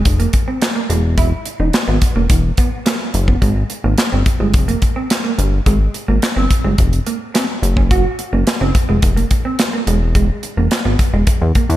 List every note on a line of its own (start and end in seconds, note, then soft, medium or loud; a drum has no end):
0.05 0.27 F1 medium
0.05 kick loud
0.05 closed hi-hat loud
0.20 0.30 A#3 medium
0.20 closed hi-hat soft
0.33 muted clean electric guitar stroke soft
0.33 kick medium
0.33 closed hi-hat medium
0.48 0.58 C4 medium
0.61 muted clean electric guitar stroke soft
0.61 snare loud
0.61 clap medium
0.61 closed hi-hat medium
0.75 0.85 A#3 medium
0.90 1.33 E1 loud
0.90 1.00 G#3 medium
0.90 closed hi-hat medium
1.18 1.28 E4 medium
1.18 kick medium
1.18 closed hi-hat medium
1.46 muted clean electric guitar stroke soft
1.46 closed hi-hat medium
1.60 1.71 E1 medium
1.60 1.70 D#4 medium
1.73 snare loud
1.73 clap medium
1.73 closed hi-hat medium
1.88 1.99 G#1 loud
1.88 1.98 B3 medium
2.02 muted clean electric guitar stroke soft
2.02 kick medium
2.02 closed hi-hat medium
2.16 2.27 E1 medium
2.16 2.26 A#3 medium
2.30 2.51 E1 medium
2.30 kick loud
2.30 closed hi-hat medium
2.57 2.68 B3 medium
2.57 kick medium
2.57 closed hi-hat medium
2.86 2.96 A#3 medium
2.86 snare loud
2.86 clap medium
2.86 closed hi-hat medium
3.14 3.36 F#1 loud
3.14 muted clean electric guitar stroke soft
3.14 closed hi-hat medium
3.28 3.38 B3 medium
3.28 kick medium
3.42 3.64 G#1 loud
3.42 3.52 G#3 medium
3.42 kick medium
3.42 closed hi-hat medium
3.70 muted clean electric guitar stroke soft
3.70 closed hi-hat medium
3.84 3.95 G#1 loud
3.84 3.94 A#3 medium
3.98 snare medium
3.98 clap medium
3.98 closed hi-hat medium
4.12 4.23 G1 medium
4.12 4.22 C4 medium
4.26 muted clean electric guitar stroke soft
4.26 kick loud
4.26 closed hi-hat medium
4.40 4.56 G1 medium
4.40 4.50 G#3 medium
4.54 4.76 F1 medium
4.54 kick loud
4.54 closed hi-hat medium
4.68 4.78 A#3 medium
4.68 closed hi-hat soft
4.82 muted clean electric guitar stroke soft
4.82 kick medium
4.82 closed hi-hat medium
4.96 5.06 C4 medium
5.10 muted clean electric guitar stroke soft
5.10 snare loud
5.10 clap medium
5.10 closed hi-hat medium
5.24 5.34 A#3 medium
5.38 5.60 G1 loud
5.38 5.48 G3 medium
5.38 closed hi-hat medium
5.66 5.88 G#1 loud
5.66 5.76 G#3 medium
5.66 kick medium
5.66 closed hi-hat medium
5.94 muted clean electric guitar stroke soft
5.94 closed hi-hat medium
6.08 6.19 G#1 medium
6.08 6.18 A#3 medium
6.22 snare loud
6.22 clap medium
6.22 closed hi-hat medium
6.36 6.47 G1 medium
6.36 6.46 C4 medium
6.50 muted clean electric guitar stroke soft
6.50 kick medium
6.50 closed hi-hat medium
6.64 6.75 G1 medium
6.64 6.74 G#3 medium
6.78 7.00 F1 medium
6.78 kick loud
6.78 closed hi-hat medium
6.93 closed hi-hat soft
7.07 7.17 A#3 medium
7.07 closed hi-hat medium
7.34 7.44 C4 medium
7.34 snare loud
7.34 clap medium
7.34 closed hi-hat medium
7.63 8.06 F#1 loud
7.63 muted clean electric guitar stroke soft
7.63 closed hi-hat medium
7.77 7.87 C#4 medium
7.77 kick medium
7.91 8.01 F#4 medium
7.91 kick loud
7.91 closed hi-hat medium
8.19 muted clean electric guitar stroke soft
8.19 closed hi-hat medium
8.33 8.44 F#1 medium
8.33 8.43 A#3 medium
8.47 snare loud
8.47 clap medium
8.47 closed hi-hat medium
8.61 8.72 F#1 loud
8.61 8.71 C4 medium
8.75 muted clean electric guitar stroke soft
8.75 kick loud
8.75 closed hi-hat medium
8.89 9.00 F1 medium
8.89 8.99 G#3 medium
9.02 9.24 F1 medium
9.02 kick loud
9.02 closed hi-hat medium
9.17 9.27 A#3 medium
9.17 closed hi-hat soft
9.31 muted clean electric guitar stroke soft
9.31 kick medium
9.31 closed hi-hat medium
9.45 9.55 C4 medium
9.59 muted clean electric guitar stroke soft
9.59 snare loud
9.59 clap medium
9.59 closed hi-hat medium
9.73 9.83 A#3 medium
9.87 10.30 E1 loud
9.87 9.97 G#3 medium
9.87 closed hi-hat medium
10.15 10.25 G#3 medium
10.15 kick medium
10.15 closed hi-hat medium
10.43 muted clean electric guitar stroke soft
10.43 closed hi-hat medium
10.57 10.68 E1 medium
10.57 10.67 A#3 medium
10.71 snare medium
10.71 clap medium
10.71 closed hi-hat medium
10.85 10.96 G#1 medium
10.85 10.95 B3 medium
10.99 muted clean electric guitar stroke soft
10.99 kick medium
10.99 closed hi-hat medium
11.14 11.24 E1 medium
11.14 11.23 G#3 medium
11.27 kick loud
11.27 closed hi-hat medium
11.42 11.52 E2 loud
11.55 11.65 A#3 medium
11.55 kick medium
11.55 closed hi-hat medium
11.69 11.77 E2 loud
11.69 closed hi-hat soft